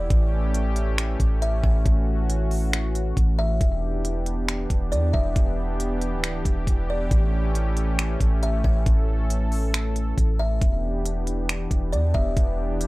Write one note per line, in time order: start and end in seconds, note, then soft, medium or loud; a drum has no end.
0.10 1.16 A1 loud
0.10 10.57 E3 medium
0.10 3.57 A3 medium
0.10 3.57 C#4 medium
0.10 1.84 G4 medium
0.10 kick loud
0.10 closed hi-hat medium
0.54 closed hi-hat medium
0.76 closed hi-hat medium
0.98 finger snap loud
0.98 closed hi-hat medium
1.20 1.62 A1 loud
1.20 kick medium
1.20 closed hi-hat medium
1.42 1.63 E5 medium
1.42 closed hi-hat medium
1.64 1.85 A1 loud
1.64 1.84 F#5 medium
1.64 kick medium
1.86 3.13 A1 loud
1.86 3.59 F#4 medium
1.86 kick loud
1.86 closed hi-hat medium
2.30 closed hi-hat medium
2.51 open hi-hat medium
2.73 finger snap loud
2.73 closed hi-hat medium
2.95 closed hi-hat medium
3.17 3.59 A1 loud
3.17 kick medium
3.17 closed hi-hat medium
3.39 3.60 E5 medium
3.61 4.66 E1 loud
3.61 7.08 B3 medium
3.61 7.08 D4 medium
3.61 8.82 G4 medium
3.61 kick loud
3.61 closed hi-hat medium
4.05 closed hi-hat medium
4.26 closed hi-hat medium
4.49 finger snap loud
4.49 closed hi-hat medium
4.70 4.94 E1 loud
4.70 kick medium
4.70 closed hi-hat medium
4.92 5.13 E2 loud
4.92 5.13 D5 medium
4.92 closed hi-hat medium
5.13 5.35 E1 loud
5.13 5.34 E5 medium
5.13 kick medium
5.36 6.14 E1 loud
5.36 kick loud
5.36 closed hi-hat medium
5.80 closed hi-hat medium
6.01 closed hi-hat medium
6.13 6.44 D1 loud
6.24 finger snap loud
6.24 closed hi-hat medium
6.45 6.66 E1 loud
6.45 kick medium
6.45 closed hi-hat medium
6.67 7.09 E1 loud
6.67 kick medium
6.67 closed hi-hat medium
6.90 7.10 D5 medium
7.11 8.17 A1 loud
7.11 10.58 A3 medium
7.11 10.58 C#4 medium
7.11 kick loud
7.11 closed hi-hat medium
7.55 closed hi-hat medium
7.77 closed hi-hat medium
7.99 finger snap loud
7.99 closed hi-hat medium
8.21 8.63 A1 loud
8.21 kick medium
8.21 closed hi-hat medium
8.43 8.63 E5 medium
8.43 closed hi-hat medium
8.64 8.85 A1 loud
8.64 8.85 F#5 medium
8.64 kick medium
8.86 10.14 A1 loud
8.86 10.60 A4 medium
8.86 kick loud
8.86 closed hi-hat medium
9.30 closed hi-hat medium
9.52 open hi-hat medium
9.74 finger snap loud
9.74 closed hi-hat medium
9.96 closed hi-hat medium
10.18 10.60 A1 loud
10.18 kick medium
10.18 closed hi-hat medium
10.39 10.60 E5 medium
10.62 11.67 E1 loud
10.62 12.87 E3 medium
10.62 12.87 B3 medium
10.62 12.87 D4 medium
10.62 12.87 G4 medium
10.62 kick loud
10.62 closed hi-hat medium
11.05 closed hi-hat medium
11.27 closed hi-hat medium
11.49 finger snap loud
11.49 closed hi-hat medium
11.71 11.94 E1 loud
11.71 kick medium
11.71 closed hi-hat medium
11.92 12.14 E2 loud
11.92 12.13 D5 medium
11.92 closed hi-hat medium
12.14 12.36 E1 loud
12.14 12.35 E5 medium
12.14 kick medium
12.37 12.87 E1 loud
12.37 kick loud
12.37 closed hi-hat medium
12.81 closed hi-hat medium